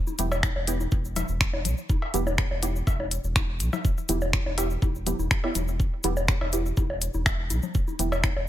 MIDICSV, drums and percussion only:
0, 0, Header, 1, 2, 480
1, 0, Start_track
1, 0, Key_signature, 1, "minor"
1, 0, Tempo, 487805
1, 1865, Time_signature, 4, 2, 24, 8
1, 8351, End_track
2, 0, Start_track
2, 0, Title_t, "Drums"
2, 69, Note_on_c, 9, 69, 39
2, 71, Note_on_c, 9, 63, 46
2, 167, Note_off_c, 9, 69, 0
2, 169, Note_off_c, 9, 63, 0
2, 182, Note_on_c, 9, 69, 100
2, 184, Note_on_c, 9, 42, 93
2, 185, Note_on_c, 9, 64, 82
2, 280, Note_off_c, 9, 69, 0
2, 282, Note_off_c, 9, 42, 0
2, 284, Note_off_c, 9, 64, 0
2, 311, Note_on_c, 9, 56, 66
2, 311, Note_on_c, 9, 60, 67
2, 312, Note_on_c, 9, 69, 43
2, 409, Note_off_c, 9, 56, 0
2, 409, Note_off_c, 9, 60, 0
2, 410, Note_off_c, 9, 69, 0
2, 424, Note_on_c, 9, 26, 96
2, 425, Note_on_c, 9, 36, 117
2, 425, Note_on_c, 9, 63, 47
2, 429, Note_on_c, 9, 69, 50
2, 522, Note_off_c, 9, 26, 0
2, 523, Note_off_c, 9, 36, 0
2, 523, Note_off_c, 9, 63, 0
2, 528, Note_off_c, 9, 69, 0
2, 551, Note_on_c, 9, 60, 63
2, 649, Note_off_c, 9, 60, 0
2, 664, Note_on_c, 9, 42, 98
2, 667, Note_on_c, 9, 69, 89
2, 762, Note_off_c, 9, 42, 0
2, 766, Note_off_c, 9, 69, 0
2, 790, Note_on_c, 9, 63, 47
2, 791, Note_on_c, 9, 69, 39
2, 889, Note_off_c, 9, 63, 0
2, 889, Note_off_c, 9, 69, 0
2, 900, Note_on_c, 9, 69, 52
2, 904, Note_on_c, 9, 36, 123
2, 998, Note_off_c, 9, 69, 0
2, 1003, Note_off_c, 9, 36, 0
2, 1031, Note_on_c, 9, 69, 36
2, 1129, Note_off_c, 9, 69, 0
2, 1143, Note_on_c, 9, 69, 93
2, 1144, Note_on_c, 9, 42, 97
2, 1145, Note_on_c, 9, 56, 64
2, 1145, Note_on_c, 9, 63, 47
2, 1145, Note_on_c, 9, 64, 93
2, 1242, Note_off_c, 9, 69, 0
2, 1243, Note_off_c, 9, 42, 0
2, 1243, Note_off_c, 9, 56, 0
2, 1243, Note_off_c, 9, 63, 0
2, 1243, Note_off_c, 9, 64, 0
2, 1261, Note_on_c, 9, 69, 42
2, 1360, Note_off_c, 9, 69, 0
2, 1384, Note_on_c, 9, 26, 96
2, 1385, Note_on_c, 9, 36, 121
2, 1386, Note_on_c, 9, 69, 55
2, 1483, Note_off_c, 9, 26, 0
2, 1483, Note_off_c, 9, 36, 0
2, 1485, Note_off_c, 9, 69, 0
2, 1510, Note_on_c, 9, 60, 67
2, 1510, Note_on_c, 9, 63, 47
2, 1608, Note_off_c, 9, 60, 0
2, 1608, Note_off_c, 9, 63, 0
2, 1624, Note_on_c, 9, 42, 100
2, 1625, Note_on_c, 9, 64, 80
2, 1625, Note_on_c, 9, 69, 100
2, 1723, Note_off_c, 9, 42, 0
2, 1724, Note_off_c, 9, 64, 0
2, 1724, Note_off_c, 9, 69, 0
2, 1747, Note_on_c, 9, 69, 40
2, 1845, Note_off_c, 9, 69, 0
2, 1865, Note_on_c, 9, 36, 124
2, 1865, Note_on_c, 9, 63, 50
2, 1866, Note_on_c, 9, 69, 58
2, 1963, Note_off_c, 9, 36, 0
2, 1963, Note_off_c, 9, 63, 0
2, 1964, Note_off_c, 9, 69, 0
2, 1990, Note_on_c, 9, 56, 63
2, 2088, Note_off_c, 9, 56, 0
2, 2104, Note_on_c, 9, 42, 98
2, 2105, Note_on_c, 9, 64, 83
2, 2109, Note_on_c, 9, 69, 94
2, 2202, Note_off_c, 9, 42, 0
2, 2204, Note_off_c, 9, 64, 0
2, 2208, Note_off_c, 9, 69, 0
2, 2231, Note_on_c, 9, 60, 66
2, 2231, Note_on_c, 9, 63, 47
2, 2231, Note_on_c, 9, 69, 43
2, 2329, Note_off_c, 9, 60, 0
2, 2329, Note_off_c, 9, 63, 0
2, 2330, Note_off_c, 9, 69, 0
2, 2343, Note_on_c, 9, 69, 51
2, 2344, Note_on_c, 9, 26, 97
2, 2345, Note_on_c, 9, 36, 126
2, 2441, Note_off_c, 9, 69, 0
2, 2442, Note_off_c, 9, 26, 0
2, 2443, Note_off_c, 9, 36, 0
2, 2471, Note_on_c, 9, 60, 60
2, 2569, Note_off_c, 9, 60, 0
2, 2584, Note_on_c, 9, 42, 102
2, 2584, Note_on_c, 9, 69, 96
2, 2585, Note_on_c, 9, 63, 47
2, 2682, Note_off_c, 9, 42, 0
2, 2683, Note_off_c, 9, 69, 0
2, 2684, Note_off_c, 9, 63, 0
2, 2713, Note_on_c, 9, 69, 40
2, 2812, Note_off_c, 9, 69, 0
2, 2825, Note_on_c, 9, 36, 127
2, 2825, Note_on_c, 9, 56, 65
2, 2829, Note_on_c, 9, 69, 61
2, 2923, Note_off_c, 9, 36, 0
2, 2924, Note_off_c, 9, 56, 0
2, 2927, Note_off_c, 9, 69, 0
2, 2951, Note_on_c, 9, 60, 62
2, 2951, Note_on_c, 9, 63, 47
2, 3049, Note_off_c, 9, 60, 0
2, 3049, Note_off_c, 9, 63, 0
2, 3064, Note_on_c, 9, 42, 97
2, 3065, Note_on_c, 9, 69, 91
2, 3162, Note_off_c, 9, 42, 0
2, 3163, Note_off_c, 9, 69, 0
2, 3189, Note_on_c, 9, 69, 46
2, 3287, Note_off_c, 9, 69, 0
2, 3304, Note_on_c, 9, 26, 96
2, 3305, Note_on_c, 9, 36, 119
2, 3305, Note_on_c, 9, 63, 47
2, 3305, Note_on_c, 9, 69, 55
2, 3403, Note_off_c, 9, 26, 0
2, 3403, Note_off_c, 9, 36, 0
2, 3403, Note_off_c, 9, 63, 0
2, 3403, Note_off_c, 9, 69, 0
2, 3540, Note_on_c, 9, 69, 90
2, 3544, Note_on_c, 9, 42, 96
2, 3638, Note_off_c, 9, 69, 0
2, 3643, Note_off_c, 9, 42, 0
2, 3670, Note_on_c, 9, 69, 41
2, 3671, Note_on_c, 9, 56, 63
2, 3671, Note_on_c, 9, 63, 47
2, 3671, Note_on_c, 9, 64, 93
2, 3769, Note_off_c, 9, 56, 0
2, 3769, Note_off_c, 9, 63, 0
2, 3769, Note_off_c, 9, 64, 0
2, 3769, Note_off_c, 9, 69, 0
2, 3785, Note_on_c, 9, 36, 122
2, 3786, Note_on_c, 9, 69, 58
2, 3883, Note_off_c, 9, 36, 0
2, 3884, Note_off_c, 9, 69, 0
2, 3913, Note_on_c, 9, 69, 39
2, 4012, Note_off_c, 9, 69, 0
2, 4022, Note_on_c, 9, 69, 100
2, 4024, Note_on_c, 9, 42, 94
2, 4025, Note_on_c, 9, 63, 48
2, 4025, Note_on_c, 9, 64, 77
2, 4120, Note_off_c, 9, 69, 0
2, 4122, Note_off_c, 9, 42, 0
2, 4124, Note_off_c, 9, 63, 0
2, 4124, Note_off_c, 9, 64, 0
2, 4144, Note_on_c, 9, 69, 35
2, 4151, Note_on_c, 9, 60, 65
2, 4242, Note_off_c, 9, 69, 0
2, 4249, Note_off_c, 9, 60, 0
2, 4264, Note_on_c, 9, 26, 94
2, 4265, Note_on_c, 9, 36, 122
2, 4266, Note_on_c, 9, 69, 52
2, 4362, Note_off_c, 9, 26, 0
2, 4363, Note_off_c, 9, 36, 0
2, 4364, Note_off_c, 9, 69, 0
2, 4391, Note_on_c, 9, 60, 59
2, 4391, Note_on_c, 9, 63, 46
2, 4489, Note_off_c, 9, 60, 0
2, 4489, Note_off_c, 9, 63, 0
2, 4504, Note_on_c, 9, 42, 99
2, 4505, Note_on_c, 9, 56, 64
2, 4515, Note_on_c, 9, 69, 103
2, 4602, Note_off_c, 9, 42, 0
2, 4603, Note_off_c, 9, 56, 0
2, 4613, Note_off_c, 9, 69, 0
2, 4627, Note_on_c, 9, 69, 37
2, 4725, Note_off_c, 9, 69, 0
2, 4745, Note_on_c, 9, 36, 126
2, 4745, Note_on_c, 9, 63, 47
2, 4747, Note_on_c, 9, 69, 52
2, 4843, Note_off_c, 9, 36, 0
2, 4843, Note_off_c, 9, 63, 0
2, 4845, Note_off_c, 9, 69, 0
2, 4872, Note_on_c, 9, 69, 35
2, 4971, Note_off_c, 9, 69, 0
2, 4984, Note_on_c, 9, 42, 95
2, 4984, Note_on_c, 9, 64, 93
2, 4986, Note_on_c, 9, 69, 91
2, 5083, Note_off_c, 9, 42, 0
2, 5083, Note_off_c, 9, 64, 0
2, 5084, Note_off_c, 9, 69, 0
2, 5110, Note_on_c, 9, 69, 40
2, 5111, Note_on_c, 9, 63, 47
2, 5208, Note_off_c, 9, 69, 0
2, 5209, Note_off_c, 9, 63, 0
2, 5224, Note_on_c, 9, 26, 92
2, 5224, Note_on_c, 9, 36, 116
2, 5227, Note_on_c, 9, 69, 51
2, 5322, Note_off_c, 9, 26, 0
2, 5323, Note_off_c, 9, 36, 0
2, 5325, Note_off_c, 9, 69, 0
2, 5350, Note_on_c, 9, 56, 66
2, 5350, Note_on_c, 9, 60, 58
2, 5448, Note_off_c, 9, 56, 0
2, 5448, Note_off_c, 9, 60, 0
2, 5461, Note_on_c, 9, 69, 100
2, 5464, Note_on_c, 9, 42, 96
2, 5465, Note_on_c, 9, 63, 46
2, 5465, Note_on_c, 9, 64, 75
2, 5559, Note_off_c, 9, 69, 0
2, 5562, Note_off_c, 9, 42, 0
2, 5563, Note_off_c, 9, 63, 0
2, 5563, Note_off_c, 9, 64, 0
2, 5588, Note_on_c, 9, 69, 42
2, 5686, Note_off_c, 9, 69, 0
2, 5704, Note_on_c, 9, 36, 113
2, 5707, Note_on_c, 9, 69, 53
2, 5802, Note_off_c, 9, 36, 0
2, 5805, Note_off_c, 9, 69, 0
2, 5938, Note_on_c, 9, 69, 84
2, 5944, Note_on_c, 9, 42, 92
2, 5944, Note_on_c, 9, 63, 46
2, 5944, Note_on_c, 9, 64, 76
2, 6036, Note_off_c, 9, 69, 0
2, 6042, Note_off_c, 9, 42, 0
2, 6043, Note_off_c, 9, 63, 0
2, 6043, Note_off_c, 9, 64, 0
2, 6067, Note_on_c, 9, 69, 37
2, 6069, Note_on_c, 9, 60, 65
2, 6166, Note_off_c, 9, 69, 0
2, 6167, Note_off_c, 9, 60, 0
2, 6181, Note_on_c, 9, 69, 48
2, 6183, Note_on_c, 9, 26, 90
2, 6184, Note_on_c, 9, 36, 120
2, 6279, Note_off_c, 9, 69, 0
2, 6282, Note_off_c, 9, 26, 0
2, 6282, Note_off_c, 9, 36, 0
2, 6310, Note_on_c, 9, 56, 69
2, 6310, Note_on_c, 9, 60, 59
2, 6310, Note_on_c, 9, 63, 45
2, 6408, Note_off_c, 9, 56, 0
2, 6408, Note_off_c, 9, 60, 0
2, 6408, Note_off_c, 9, 63, 0
2, 6422, Note_on_c, 9, 69, 101
2, 6424, Note_on_c, 9, 42, 96
2, 6521, Note_off_c, 9, 69, 0
2, 6522, Note_off_c, 9, 42, 0
2, 6553, Note_on_c, 9, 69, 40
2, 6651, Note_off_c, 9, 69, 0
2, 6660, Note_on_c, 9, 69, 50
2, 6663, Note_on_c, 9, 63, 45
2, 6664, Note_on_c, 9, 36, 123
2, 6758, Note_off_c, 9, 69, 0
2, 6762, Note_off_c, 9, 36, 0
2, 6762, Note_off_c, 9, 63, 0
2, 6789, Note_on_c, 9, 60, 61
2, 6887, Note_off_c, 9, 60, 0
2, 6903, Note_on_c, 9, 69, 99
2, 6904, Note_on_c, 9, 42, 95
2, 7001, Note_off_c, 9, 69, 0
2, 7002, Note_off_c, 9, 42, 0
2, 7022, Note_on_c, 9, 69, 42
2, 7029, Note_on_c, 9, 63, 45
2, 7121, Note_off_c, 9, 69, 0
2, 7128, Note_off_c, 9, 63, 0
2, 7143, Note_on_c, 9, 26, 93
2, 7144, Note_on_c, 9, 36, 115
2, 7144, Note_on_c, 9, 56, 64
2, 7146, Note_on_c, 9, 69, 50
2, 7242, Note_off_c, 9, 26, 0
2, 7242, Note_off_c, 9, 36, 0
2, 7243, Note_off_c, 9, 56, 0
2, 7244, Note_off_c, 9, 69, 0
2, 7381, Note_on_c, 9, 69, 87
2, 7383, Note_on_c, 9, 42, 96
2, 7384, Note_on_c, 9, 63, 44
2, 7480, Note_off_c, 9, 69, 0
2, 7482, Note_off_c, 9, 42, 0
2, 7482, Note_off_c, 9, 63, 0
2, 7502, Note_on_c, 9, 69, 42
2, 7510, Note_on_c, 9, 64, 86
2, 7601, Note_off_c, 9, 69, 0
2, 7608, Note_off_c, 9, 64, 0
2, 7621, Note_on_c, 9, 69, 51
2, 7624, Note_on_c, 9, 36, 114
2, 7719, Note_off_c, 9, 69, 0
2, 7723, Note_off_c, 9, 36, 0
2, 7750, Note_on_c, 9, 63, 44
2, 7750, Note_on_c, 9, 69, 33
2, 7848, Note_off_c, 9, 63, 0
2, 7849, Note_off_c, 9, 69, 0
2, 7864, Note_on_c, 9, 42, 90
2, 7865, Note_on_c, 9, 64, 80
2, 7868, Note_on_c, 9, 69, 94
2, 7963, Note_off_c, 9, 42, 0
2, 7964, Note_off_c, 9, 64, 0
2, 7967, Note_off_c, 9, 69, 0
2, 7991, Note_on_c, 9, 56, 72
2, 7991, Note_on_c, 9, 60, 65
2, 7992, Note_on_c, 9, 69, 35
2, 8089, Note_off_c, 9, 56, 0
2, 8089, Note_off_c, 9, 60, 0
2, 8091, Note_off_c, 9, 69, 0
2, 8103, Note_on_c, 9, 69, 55
2, 8104, Note_on_c, 9, 26, 85
2, 8104, Note_on_c, 9, 36, 112
2, 8106, Note_on_c, 9, 63, 42
2, 8202, Note_off_c, 9, 69, 0
2, 8203, Note_off_c, 9, 26, 0
2, 8203, Note_off_c, 9, 36, 0
2, 8204, Note_off_c, 9, 63, 0
2, 8231, Note_on_c, 9, 60, 62
2, 8329, Note_off_c, 9, 60, 0
2, 8351, End_track
0, 0, End_of_file